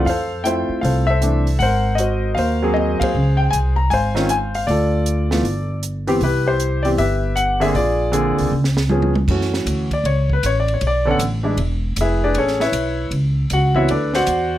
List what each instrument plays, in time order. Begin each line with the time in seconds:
0.05 upright bass F2, grand piano F5, open hi-hat
0.09 grand piano A4 C5
0.44 grand piano A3 C4 E4 F4 C5 E5 G5, closed hi-hat
0.69 muted upright bass stroke
0.81 upright bass C2, grand piano A4 C5 F5, open hi-hat
1.07 grand piano A4 C5 E5
1.21 grand piano E3 A3 C4 D4, closed hi-hat
1.47 open hi-hat
1.59 upright bass G#1, grand piano A#4 C5 F#5, open hi-hat
1.95 grand piano F#4 D#5, closed hi-hat
2.00 grand piano C5
2.35 upright bass D#2, grand piano F5, open hi-hat
2.39 grand piano A#4 C5
2.62 grand piano F#3 A#3 C4 G#4
2.74 grand piano D#5, high tom
3.00 grand piano G#4 C5 F5, muted upright bass stroke, kick, ride
3.15 upright bass C#2
3.37 grand piano G5
3.51 upright bass C2, grand piano G#5, closed hi-hat
3.76 grand piano A#5
3.90 upright bass G#1, grand piano C5 F5 G#5, open hi-hat
4.15 grand piano D#3 C4 C#4 F4, snare
4.29 grand piano G#5, closed hi-hat
4.55 grand piano F5, open hi-hat
4.67 upright bass D2, grand piano F4 A4 D5, open hi-hat
5.06 closed hi-hat
5.30 grand piano E3 A3 B3 F4, snare
5.43 upright bass G1, open hi-hat
5.83 closed hi-hat
6.07 grand piano E3 B3 C4 G4, open hi-hat
6.20 upright bass C2, grand piano E4 G4 B4, open hi-hat
6.46 grand piano E4 G4 C5
6.60 closed hi-hat
6.83 grand piano E3 B3 C4 G4 D5, open hi-hat
6.97 upright bass G1, grand piano G4 B4 E5, open hi-hat
7.36 grand piano F#5, closed hi-hat
7.60 grand piano D3 A#3 C4 G#4 E5, open hi-hat
7.74 upright bass A#1, grand piano F4 G#4 D5, open hi-hat
8.12 grand piano D3 A#3 C4 G#4, closed hi-hat
8.38 upright bass C2, open hi-hat
8.51 upright bass C#2
8.64 snare
8.77 snare
8.89 grand piano F3 B3 C#4 G#4, mid tom
9.02 mid tom
9.15 mid tom
9.28 upright bass F#2, grand piano E3 A3 C#4 F#4, kick, crash
9.41 snare
9.54 snare
9.66 upright bass D2, hi-hat pedal, ride
9.91 grand piano D5, kick, ride
10.04 upright bass C#2, grand piano C#5, ride
10.30 grand piano B4, kick
10.43 upright bass A1, grand piano C#5, hi-hat pedal, ride
10.60 grand piano D5
10.68 ride
10.74 grand piano C#5
10.81 upright bass B1, ride
10.87 grand piano D5
11.05 grand piano D3 B3 C#4 A4
11.11 grand piano F#5
11.19 upright bass A1, hi-hat pedal, ride
11.43 grand piano E3 G#3 D4 E4
11.57 upright bass E1, ride
11.96 upright bass F1, hi-hat pedal, ride
12.01 grand piano E4 G#4 B4 E5
12.24 grand piano D4 G#4 B4 D5
12.35 upright bass A1, grand piano C#5, ride
12.39 grand piano C#4 G#4 A4
12.47 snare
12.60 grand piano E4 B4 C#5 E5, snare
12.72 upright bass B1, hi-hat pedal, ride
13.11 upright bass C#2, ride
13.50 upright bass C#2, grand piano F#4 F#5, hi-hat pedal, ride
13.75 grand piano E3 B3 C4 E4 F#4 B4 C#5 E5, kick
13.88 upright bass D2, grand piano D4 A4 B4 D5, ride
14.14 grand piano F#4 C5 D5 F#5, snare
14.27 upright bass E2, hi-hat pedal, ride